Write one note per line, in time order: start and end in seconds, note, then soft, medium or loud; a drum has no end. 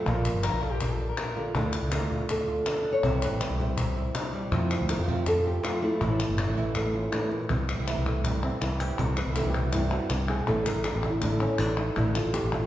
0.00 1.59 F3 medium
0.06 0.29 A#1 medium
0.06 1.37 A#2 medium
0.06 0.42 F3 medium
0.06 0.42 A#3 medium
0.06 0.43 D4 medium
0.06 0.43 F4 medium
0.06 0.99 A#4 medium
0.06 cajon bass loud
0.25 cajon slap soft
0.25 clap medium
0.34 0.49 G1 medium
0.43 0.61 F3 soft
0.43 0.61 A#3 soft
0.43 0.61 D4 soft
0.43 0.60 F4 soft
0.43 0.64 A#4 medium
0.43 cajon slap loud
0.43 clap medium
0.52 1.12 A#1 medium
0.61 0.80 A#3 soft
0.61 0.80 D4 soft
0.61 0.80 F4 soft
0.61 0.72 A4 medium
0.61 cajon bass medium
0.71 0.92 G4 medium
0.80 1.54 D4 medium
0.80 muted nylon-string guitar stroke medium
0.80 cajon bass medium
0.80 clap medium
0.91 1.11 A4 medium
1.09 1.46 A#4 medium
1.17 1.53 A#4 soft
1.17 cajon slap medium
1.17 clap medium
1.36 1.54 D3 medium
1.36 1.55 A#3 soft
1.36 1.55 D4 soft
1.36 1.54 F4 soft
1.36 cajon slap soft
1.55 1.77 D2 medium
1.55 1.91 D3 medium
1.55 3.04 D3 medium
1.55 1.91 A3 medium
1.55 1.92 D4 medium
1.55 1.92 E4 medium
1.55 cajon bass loud
1.73 2.30 F4 medium
1.73 cajon slap soft
1.73 clap medium
1.83 1.98 C#2 medium
1.92 2.10 D3 soft
1.92 2.10 A3 soft
1.92 2.10 D4 soft
1.92 2.09 F4 soft
1.92 2.29 A#4 medium
1.92 cajon slap loud
1.92 clap medium
2.02 2.61 D2 medium
2.10 2.28 A3 soft
2.10 2.29 D4 soft
2.10 2.28 F4 soft
2.10 cajon bass medium
2.29 3.04 A4 medium
2.29 muted nylon-string guitar stroke medium
2.29 cajon bass medium
2.29 cajon slap soft
2.29 clap medium
2.48 3.03 A3 soft
2.48 3.03 D4 soft
2.48 3.03 F4 soft
2.66 2.83 D4 soft
2.66 cajon slap loud
2.66 clap medium
2.84 3.01 D4 medium
2.84 cajon slap soft
2.92 3.05 C#5 loud
3.03 3.26 C2 loud
3.03 3.40 C3 medium
3.03 4.50 C3 medium
3.03 3.40 E3 medium
3.03 3.40 G3 medium
3.03 3.40 C4 medium
3.03 3.41 E4 medium
3.03 3.23 C5 medium
3.03 cajon bass loud
3.22 3.60 B4 loud
3.22 clap medium
3.31 3.46 A1 medium
3.41 3.59 E3 soft
3.41 3.59 G3 soft
3.41 3.59 C4 soft
3.41 3.58 E4 soft
3.41 cajon slap medium
3.41 clap medium
3.50 4.09 C2 medium
3.59 3.77 G3 soft
3.59 3.78 C4 soft
3.59 3.77 E4 soft
3.59 4.53 C5 medium
3.59 cajon bass medium
3.77 muted nylon-string guitar stroke soft
3.77 cajon bass loud
3.77 clap medium
3.96 4.52 G3 soft
3.96 4.51 C4 soft
3.96 4.52 E4 soft
4.15 4.50 E4 soft
4.15 cajon slap loud
4.15 clap medium
4.33 4.50 G3 medium
4.51 4.74 F2 medium
4.51 4.88 C3 medium
4.51 5.98 F3 medium
4.51 4.89 F3 medium
4.51 4.89 A3 medium
4.51 4.89 C4 medium
4.51 4.89 E4 medium
4.51 cajon bass loud
4.70 5.27 F4 medium
4.70 cajon slap soft
4.70 clap medium
4.81 4.95 D2 medium
4.89 4.98 A3 soft
4.89 4.98 C4 soft
4.89 4.98 F4 soft
4.89 5.27 A#4 medium
4.89 cajon slap medium
4.89 clap medium
4.98 5.58 F2 medium
4.98 5.02 F3 soft
4.98 5.03 A3 soft
4.98 5.02 C4 soft
4.98 5.03 F4 soft
5.03 5.07 F3 medium
5.03 5.07 A3 medium
5.03 5.07 C4 medium
5.03 5.07 F4 medium
5.08 5.25 C3 medium
5.08 5.25 F3 medium
5.08 5.25 A3 medium
5.08 5.25 C4 medium
5.08 5.26 F4 medium
5.08 cajon bass medium
5.26 5.83 A4 medium
5.26 muted nylon-string guitar stroke medium
5.26 cajon bass medium
5.26 cajon slap soft
5.26 clap medium
5.44 5.63 A3 soft
5.44 5.63 C4 soft
5.44 5.63 F4 soft
5.44 5.64 G4 medium
5.63 6.00 F3 soft
5.63 6.00 A3 medium
5.63 6.01 C4 soft
5.63 6.01 F4 medium
5.63 cajon slap medium
5.63 clap medium
5.82 6.76 A3 medium
5.82 7.02 E4 medium
5.82 cajon slap soft
6.00 6.23 A1 loud
6.00 7.11 A2 medium
6.00 6.37 E3 medium
6.00 6.37 A3 medium
6.00 6.38 C#4 medium
6.00 6.37 E4 medium
6.00 cajon bass medium
6.00 clap soft
6.20 cajon slap soft
6.20 clap medium
6.29 6.44 G1 medium
6.38 6.47 A3 soft
6.38 6.47 C#4 soft
6.38 6.47 E4 soft
6.38 cajon slap medium
6.38 clap medium
6.48 7.07 A1 medium
6.48 6.51 E3 soft
6.48 6.52 A3 soft
6.48 6.52 C#4 soft
6.48 6.52 E4 soft
6.52 6.55 E3 soft
6.52 6.56 A3 medium
6.52 6.56 C#4 medium
6.52 6.57 E4 medium
6.57 6.74 E3 medium
6.57 6.74 A3 medium
6.57 6.74 C#4 medium
6.57 6.75 E4 medium
6.57 cajon bass medium
6.75 7.48 A3 medium
6.75 muted nylon-string guitar stroke medium
6.75 cajon bass medium
6.75 cajon slap soft
6.75 clap medium
6.94 7.12 A3 soft
6.94 7.12 C#4 soft
6.94 7.12 E4 soft
6.94 7.04 F4 medium
7.04 7.21 E4 medium
7.12 7.31 A2 medium
7.12 7.49 E3 soft
7.12 7.49 A3 soft
7.12 7.50 C#4 soft
7.12 7.22 D4 medium
7.12 7.50 E4 soft
7.12 cajon slap loud
7.12 clap medium
7.22 7.50 E4 medium
7.31 7.49 A#2 medium
7.49 7.73 C2 medium
7.49 8.24 C3 medium
7.49 muted nylon-string guitar stroke medium
7.49 cajon bass medium
7.69 cajon slap soft
7.69 clap medium
7.74 7.78 E3 soft
7.74 7.78 A3 soft
7.74 7.78 C4 soft
7.74 7.79 E4 soft
7.79 7.93 C2 medium
7.79 7.82 E3 soft
7.79 7.82 A3 soft
7.79 7.83 C4 medium
7.79 7.83 E4 soft
7.83 7.87 E3 medium
7.83 7.87 A3 medium
7.83 7.87 C4 medium
7.83 7.88 E4 medium
7.87 8.23 C3 medium
7.87 8.24 E3 medium
7.87 8.24 A3 medium
7.87 8.24 C4 medium
7.87 8.24 E4 medium
7.87 cajon slap medium
7.87 clap medium
7.97 8.49 C2 medium
8.06 9.20 A3 soft
8.06 cajon bass medium
8.06 clap soft
8.24 8.97 G2 medium
8.24 8.42 C3 medium
8.24 8.42 E3 medium
8.24 8.43 A3 medium
8.24 8.43 C4 medium
8.24 8.42 E4 medium
8.24 cajon bass medium
8.24 clap medium
8.43 8.61 A3 soft
8.43 8.62 C4 medium
8.43 8.61 C4 soft
8.43 8.61 E4 soft
8.43 clap soft
8.61 8.91 C2 medium
8.61 9.65 E3 medium
8.61 8.80 E4 medium
8.61 muted nylon-string guitar stroke soft
8.61 cajon slap medium
8.61 clap medium
8.80 8.99 A3 soft
8.80 8.99 C4 soft
8.80 8.98 E4 soft
8.80 8.99 G4 medium
8.80 clap soft
8.98 9.21 C2 medium
8.98 9.73 C3 medium
8.98 9.17 A4 medium
8.98 muted nylon-string guitar stroke medium
8.98 cajon bass medium
9.17 9.36 B4 medium
9.17 cajon slap soft
9.17 clap medium
9.26 9.41 C2 medium
9.26 9.30 E3 soft
9.26 9.30 A3 soft
9.26 9.31 C4 soft
9.26 9.31 E4 soft
9.31 9.35 E3 soft
9.31 9.36 A3 medium
9.31 9.36 C4 medium
9.31 9.36 E4 medium
9.36 9.72 C3 medium
9.36 9.72 E3 medium
9.36 9.73 A3 medium
9.36 9.73 C4 medium
9.36 9.73 E4 medium
9.36 9.49 A4 medium
9.36 cajon slap medium
9.36 clap medium
9.45 9.97 C2 medium
9.50 9.61 G4 medium
9.54 cajon bass medium
9.54 clap soft
9.62 9.74 F#4 medium
9.72 10.45 G2 medium
9.72 9.91 C3 medium
9.72 9.91 E3 medium
9.72 9.91 A3 medium
9.72 9.91 C4 medium
9.72 9.92 E4 medium
9.72 9.90 E4 medium
9.72 cajon bass loud
9.72 cajon slap soft
9.72 clap medium
9.91 10.09 A3 soft
9.91 10.10 C4 soft
9.91 10.10 E4 soft
9.91 10.11 F#4 medium
9.91 clap soft
10.10 10.40 C2 medium
10.10 10.28 C3 medium
10.10 10.29 G4 medium
10.10 muted nylon-string guitar stroke medium
10.10 cajon slap medium
10.10 clap medium
10.28 10.48 B2 medium
10.28 10.46 A3 soft
10.28 10.47 C4 soft
10.28 10.47 E4 soft
10.28 10.47 G#4 medium
10.28 clap soft
10.47 10.70 A1 medium
10.47 11.21 A2 medium
10.47 10.65 D3 medium
10.47 11.57 D3 soft
10.47 10.65 A3 medium
10.47 10.65 D4 medium
10.47 10.65 E4 medium
10.47 10.66 A4 medium
10.47 cajon bass medium
10.66 10.84 A3 soft
10.66 10.84 D4 soft
10.66 10.84 E4 soft
10.66 10.84 A#4 loud
10.66 cajon slap soft
10.66 clap medium
10.75 10.90 A1 medium
10.84 10.97 A4 medium
10.84 muted nylon-string guitar stroke medium
10.84 cajon slap medium
10.84 clap medium
10.94 11.46 A1 medium
10.94 11.09 G4 medium
11.03 11.21 A3 soft
11.03 11.21 D4 soft
11.03 11.21 E4 soft
11.03 cajon bass medium
11.03 clap soft
11.10 11.22 E4 medium
11.22 11.60 A2 medium
11.22 11.40 D3 medium
11.22 11.40 A3 medium
11.22 11.40 D4 medium
11.22 11.39 E4 medium
11.22 cajon bass loud
11.22 cajon slap soft
11.22 clap medium
11.40 11.57 A3 soft
11.40 11.59 C#4 medium
11.40 11.58 D4 soft
11.40 11.58 E4 soft
11.40 clap medium
11.58 11.89 A1 medium
11.58 12.66 D3 medium
11.58 11.78 D4 medium
11.58 muted nylon-string guitar stroke medium
11.58 cajon slap medium
11.58 clap medium
11.77 11.96 A3 soft
11.77 11.96 D4 soft
11.77 11.97 D#4 medium
11.77 11.96 E4 soft
11.77 cajon slap soft
11.77 clap soft
11.96 12.19 A1 loud
11.96 12.66 A2 medium
11.96 12.14 D3 medium
11.96 12.15 A3 medium
11.96 12.14 D4 medium
11.96 12.15 E4 medium
11.96 12.14 E4 medium
11.96 cajon bass medium
12.15 12.33 A3 soft
12.15 12.33 D4 soft
12.15 12.33 E4 soft
12.15 12.34 F4 medium
12.15 cajon slap soft
12.15 clap medium
12.24 12.39 A1 medium
12.34 12.52 G4 medium
12.34 muted nylon-string guitar stroke soft
12.34 cajon slap medium
12.34 clap medium
12.44 12.66 A1 medium
12.52 12.66 A3 soft
12.52 12.66 D4 soft
12.52 12.66 E4 soft
12.52 12.66 F4 medium
12.52 cajon bass medium
12.52 clap soft